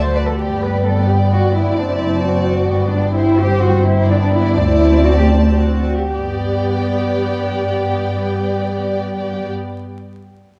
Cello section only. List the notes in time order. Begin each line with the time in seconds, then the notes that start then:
0.04 C5
0.16 B4
0.28 A4
0.40 G4
0.62 B4
0.86 A4
1.09 G4
1.32 F#4
1.56 E4
1.79 D4
1.90 E4
2.24 F#4
2.92 D4
3.14 E4
3.38 G4
3.61 F#4
3.84 E4
4.08 D4
4.32 E4
4.56 D4
4.68 E4
5.05 F#4
5.17 G4
5.49 G4
5.57 F#4
6.12 G4